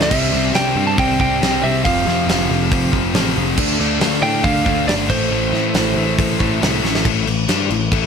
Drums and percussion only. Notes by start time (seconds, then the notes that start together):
0.01 snare
0.11 kick, open hi-hat, crash
0.34 snare
0.55 snare, open hi-hat
0.98 kick, open hi-hat
1.20 kick
1.42 snare, open hi-hat
1.85 kick, open hi-hat
2.08 snare
2.29 snare, open hi-hat
2.72 kick, open hi-hat
2.93 kick
3.14 snare, open hi-hat
3.57 kick, crash
3.80 snare
4.01 snare, open hi-hat
4.44 kick, open hi-hat
4.66 kick
4.88 snare, open hi-hat
5.10 kick, crash
5.54 snare
5.74 snare, open hi-hat
6.19 kick, open hi-hat
6.40 kick
6.62 snare, open hi-hat
6.85 snare
6.95 snare
7.05 kick, crash
7.27 crash
7.48 snare, crash
7.70 crash
7.92 kick, crash